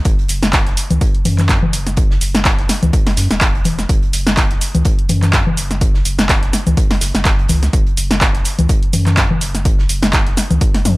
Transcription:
0.05 sub bass F#1, kick, closed hi-hat, shaker
0.19 closed hi-hat
0.28 sub bass F#1, closed hi-hat, open hi-hat, shaker
0.43 snare, closed hi-hat, shaker
0.53 kick, snare, clap, closed hi-hat, shaker
0.67 sub bass E1, snare, closed hi-hat
0.77 closed hi-hat, open hi-hat, shaker
0.91 sub bass C#2, closed hi-hat, low conga, shaker
1.01 kick, closed hi-hat, shaker
1.15 closed hi-hat
1.25 sub bass F#2, closed hi-hat, open hi-hat, low conga, shaker
1.38 snare, clap, closed hi-hat, low conga, shaker
1.49 kick, snare, clap, closed hi-hat, shaker
1.63 sub bass F#1, low conga
1.73 closed hi-hat, open hi-hat, shaker
1.87 snare, closed hi-hat, shaker
1.97 kick, closed hi-hat, shaker
2.11 snare
2.21 sub bass F#1, closed hi-hat, open hi-hat, shaker
2.35 snare, closed hi-hat, shaker
2.45 kick, snare, clap, closed hi-hat, shaker
2.59 sub bass E1, snare, closed hi-hat
2.69 snare, closed hi-hat, open hi-hat, shaker
2.83 sub bass C#2, closed hi-hat, low conga, shaker
2.93 kick, closed hi-hat, shaker
3.07 snare, open hi-hat
3.17 sub bass F#2, snare, closed hi-hat, open hi-hat, shaker
3.31 sub bass E1, snare, closed hi-hat, shaker
3.41 kick, snare, clap, closed hi-hat, shaker
3.55 closed hi-hat
3.64 closed hi-hat, open hi-hat, low conga, shaker
3.78 snare, closed hi-hat, shaker
3.89 sub bass F#1, kick, closed hi-hat, shaker
4.03 closed hi-hat
4.13 sub bass F#1, closed hi-hat, open hi-hat, shaker
4.27 snare, closed hi-hat, shaker
4.37 kick, snare, clap, closed hi-hat, shaker
4.51 sub bass E1, snare, closed hi-hat
4.61 closed hi-hat, open hi-hat, shaker
4.75 sub bass C#2, closed hi-hat, low conga, shaker
4.85 kick, closed hi-hat, shaker
4.99 closed hi-hat
5.09 sub bass F#2, closed hi-hat, open hi-hat, low conga, shaker
5.22 snare, clap, closed hi-hat, low conga, shaker
5.33 kick, snare, clap, closed hi-hat, shaker
5.47 sub bass F#1, low conga
5.57 closed hi-hat, open hi-hat, shaker
5.71 snare, closed hi-hat, shaker
5.81 kick, closed hi-hat, shaker
5.94 snare
6.05 sub bass F#1, closed hi-hat, open hi-hat, shaker
6.18 snare, closed hi-hat, shaker
6.29 kick, snare, clap, closed hi-hat, shaker
6.42 sub bass E1, snare, closed hi-hat
6.53 snare, closed hi-hat, open hi-hat, shaker
6.67 sub bass C#2, closed hi-hat, low conga, shaker
6.77 kick, closed hi-hat, shaker
6.91 snare, open hi-hat
7.01 sub bass F#1, snare, closed hi-hat, open hi-hat, shaker
7.14 sub bass F#1, snare, closed hi-hat, shaker
7.25 kick, snare, clap, closed hi-hat, shaker
7.39 closed hi-hat
7.49 sub bass C#2, closed hi-hat, open hi-hat, low conga, shaker
7.63 snare, closed hi-hat, shaker
7.73 sub bass F#1, kick, closed hi-hat, shaker
7.87 closed hi-hat
7.97 sub bass F#1, closed hi-hat, open hi-hat, shaker
8.11 snare, closed hi-hat, shaker
8.21 kick, snare, clap, closed hi-hat, shaker
8.34 sub bass E1, snare, closed hi-hat
8.45 closed hi-hat, open hi-hat, shaker
8.59 sub bass C#2, closed hi-hat, low conga, shaker
8.69 kick, closed hi-hat, shaker
8.83 closed hi-hat
8.93 sub bass F#2, closed hi-hat, open hi-hat, low conga, shaker
9.06 snare, clap, closed hi-hat, low conga, shaker
9.17 kick, snare, clap, closed hi-hat, shaker
9.31 sub bass F#1, low conga
9.41 closed hi-hat, open hi-hat, shaker
9.55 snare, closed hi-hat, shaker
9.65 kick, closed hi-hat, shaker
9.79 snare
9.89 sub bass F#1, closed hi-hat, open hi-hat, shaker
10.02 snare, closed hi-hat, shaker
10.13 kick, snare, clap, closed hi-hat, shaker
10.27 sub bass E1, snare, closed hi-hat
10.37 snare, closed hi-hat, open hi-hat, shaker
10.51 sub bass C#2, closed hi-hat, low conga, shaker
10.61 kick, closed hi-hat, shaker
10.74 snare, open hi-hat
10.85 sub bass F#2, open hi-hat, high tom, shaker

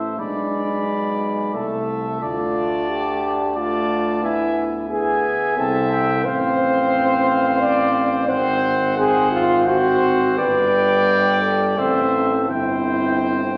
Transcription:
Already playing: bass trombone A1, trombone A3, french horn E4, trumpet C5 E5
0.18 bass trombone B1, trombone G#3, french horn D4, trumpet D5 B5
1.54 bass trombone C2, trombone A3, trumpet E5 A5
2.21 bass trombone D2, trombone A3, french horn F4, trumpet D5 A5
2.89 french horn G4
3.56 trombone A3, french horn F4, trumpet D5 A5
4.22 trombone B3, french horn E4, trumpet E5 G#5
4.90 trombone B3, french horn G#4, trumpet E5 G#5
5.57 bass trombone C2, trombone C4, french horn A4, trumpet E5 A5
5.91 trumpet G5
6.24 bass trombone A1, trombone C4, trumpet C5 F5, french horn C5
7.60 french horn D5
8.28 bass trombone G#1, trombone C4, trumpet C5 F#5, french horn C5
8.97 trombone C4, french horn G#4, trumpet C5 F#5
9.31 french horn F4
9.66 trombone C4, french horn F#4, trumpet C5 F#5
10.37 bass trombone G1, trombone G3, french horn B4, trumpet D5 G5
11.42 french horn A4
11.77 bass trombone A1, trombone C4, french horn A4, trumpet C5 E5
12.49 bass trombone G1, trombone C4, french horn E4, trumpet C5 G5

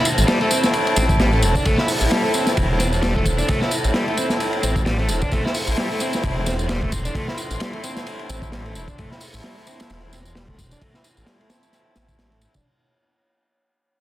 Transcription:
Already playing: string section E4 A4 C5 A5
0.05 ride, tambourine
0.18 detuned saw bass A1, horn section A3 C4 E4, tambourine
0.28 overdriven electric guitar G3, snare, ride, tambourine
0.41 overdriven electric guitar A3, ride
0.51 overdriven electric guitar C4, ride, tambourine
0.63 snare, tambourine
0.73 ride, tambourine
0.87 ride
0.96 detuned saw bass A1, overdriven electric guitar C4, ride, tambourine
1.09 kick, tambourine
1.19 overdriven electric guitar G3, snare, ride, tambourine
1.33 overdriven electric guitar A3, ride
1.42 detuned saw bass E1, horn section A3 C4 E4, ride, tambourine
1.55 overdriven electric guitar D4, kick, tambourine
1.65 detuned saw bass A1, overdriven electric guitar A3, kick, ride, tambourine
1.78 overdriven electric guitar E4, snare
1.88 open hi-hat, tambourine
2.01 detuned saw bass A1, horn section A3 C4 E4, tambourine
2.11 overdriven electric guitar G3, snare, ride, tambourine
2.24 overdriven electric guitar A3
2.34 overdriven electric guitar C4, ride, tambourine
2.47 snare, tambourine
2.57 detuned saw bass E1, kick, ride, tambourine
2.69 horn section A3 C4 E4
2.80 overdriven electric guitar C4, snare, ride, tambourine
2.93 tambourine
3.03 overdriven electric guitar G3, snare, ride, tambourine
3.16 overdriven electric guitar A3, kick
3.25 kick, ride, tambourine
3.38 overdriven electric guitar D4, tambourine
3.48 overdriven electric guitar A3, kick, ride, tambourine
3.61 overdriven electric guitar E4, snare
3.71 ride, tambourine
3.84 detuned saw bass A1, horn section A3 C4 E4, tambourine
3.94 overdriven electric guitar G3, snare, ride, tambourine
4.08 overdriven electric guitar A3, ride
4.17 overdriven electric guitar C4, ride, tambourine
4.30 snare, tambourine
4.40 ride, tambourine
4.53 ride
4.63 detuned saw bass A1, overdriven electric guitar C4, ride, tambourine
4.76 kick, tambourine
4.86 overdriven electric guitar G3, snare, ride, tambourine
4.99 overdriven electric guitar A3, ride
5.08 detuned saw bass E1, horn section A3 C4 E4, ride, tambourine
5.22 overdriven electric guitar D4, kick, tambourine
5.32 detuned saw bass A1, overdriven electric guitar A3, string section C6, kick, ride, tambourine
5.45 overdriven electric guitar E4, snare
5.54 open hi-hat, tambourine
5.67 detuned saw bass A1, horn section A3 C4 E4, tambourine
5.77 overdriven electric guitar G3, snare, ride, tambourine
5.91 overdriven electric guitar A3
6.00 overdriven electric guitar C4, ride, tambourine
6.13 snare, tambourine
6.23 detuned saw bass E1, kick, ride, tambourine
6.36 horn section A3 C4 E4
6.46 overdriven electric guitar C4, snare, ride, tambourine
6.59 tambourine
6.69 overdriven electric guitar G3, snare, ride, tambourine
6.82 overdriven electric guitar A3, kick
6.92 kick, ride, tambourine
7.05 overdriven electric guitar D4, tambourine
7.15 overdriven electric guitar A3, kick, ride, tambourine
7.28 overdriven electric guitar E4, snare
7.37 ride, tambourine
7.50 detuned saw bass A1, horn section A3 C4 E4, tambourine
7.60 overdriven electric guitar G3, snare, ride, tambourine
7.73 overdriven electric guitar A3, ride
7.84 overdriven electric guitar C4, ride, tambourine
7.96 snare, tambourine
8.07 ride, tambourine
8.19 ride
8.29 detuned saw bass A1, overdriven electric guitar C4, ride, tambourine
8.42 kick, tambourine
8.52 overdriven electric guitar G3, snare, ride, tambourine
8.65 overdriven electric guitar A3, ride
8.75 detuned saw bass E1, horn section A3 C4 E4, ride, tambourine
8.88 overdriven electric guitar D4, kick, tambourine
8.98 detuned saw bass A1, overdriven electric guitar A3, kick, ride, tambourine
9.11 overdriven electric guitar E4, snare
9.20 open hi-hat, tambourine
9.34 detuned saw bass A1, horn section A3 C4 E4, tambourine
9.44 overdriven electric guitar G3, snare, ride, tambourine
9.57 overdriven electric guitar A3
9.67 overdriven electric guitar C4, ride, tambourine
9.80 snare, ride, tambourine
9.90 detuned saw bass E1, snare, ride, tambourine
10.02 horn section A3 C4 E4
10.13 overdriven electric guitar C4, snare, ride, tambourine
10.25 tambourine
10.35 overdriven electric guitar G3, snare, ride
10.48 overdriven electric guitar A3, kick
10.58 kick, ride, tambourine
10.71 overdriven electric guitar D4, tambourine
10.81 overdriven electric guitar A3, kick, ride, tambourine
10.94 overdriven electric guitar E4, snare
11.04 ride, tambourine
11.17 detuned saw bass A1, horn section A3 C4 E4, tambourine
11.27 overdriven electric guitar G3, snare, ride, tambourine
11.41 overdriven electric guitar A3, ride
11.50 overdriven electric guitar C4, snare, ride, tambourine
11.63 tambourine
11.72 snare, ride, tambourine
11.96 detuned saw bass A1, overdriven electric guitar C4, snare, ride, tambourine
12.09 kick, tambourine
12.19 detuned saw bass A1, overdriven electric guitar G3, snare, ride, tambourine
12.32 overdriven electric guitar A3, ride
12.41 horn section A3 C4 E4, ride, tambourine
12.54 detuned saw bass E1, overdriven electric guitar D4, kick, tambourine

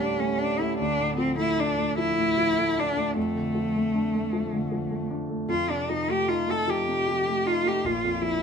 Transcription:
Already playing: grand piano D2 A2 G3 A3 C#4
0.00 cello D4
0.18 grand piano A3, cello C#4
0.38 grand piano C#4, cello D4
0.59 grand piano A3, cello E4
0.78 grand piano D2, cello D4
1.00 grand piano A2
1.17 grand piano F3, cello C4
1.38 grand piano A3, cello E4
1.58 grand piano D4, cello D4
1.78 grand piano A3
1.98 grand piano F3, cello E4
2.18 grand piano A2
2.38 grand piano F3
2.58 grand piano A3
2.77 grand piano D4, cello D4
2.96 grand piano A3
3.15 grand piano F2, cello A3
3.35 grand piano D3
3.55 grand piano F3
3.76 grand piano A3
3.95 grand piano D4
4.14 grand piano A3
4.33 grand piano F3
4.52 grand piano D3
4.72 grand piano F3
4.91 grand piano A3
5.10 grand piano D4
5.29 grand piano A3
5.49 grand piano F2, cello F4
5.70 grand piano C3, cello D4
5.89 grand piano F3, cello D#4
6.08 grand piano A3, cello G4
6.28 grand piano D#4, cello F4
6.47 grand piano A3, cello A4
6.68 grand piano F3, cello G4
6.88 grand piano C3
7.07 grand piano F3
7.27 grand piano A3
7.46 grand piano D#4, cello F4
7.64 grand piano A3, cello G4
7.84 grand piano A#1, cello F4
8.04 grand piano F2
8.22 grand piano F3, cello E4

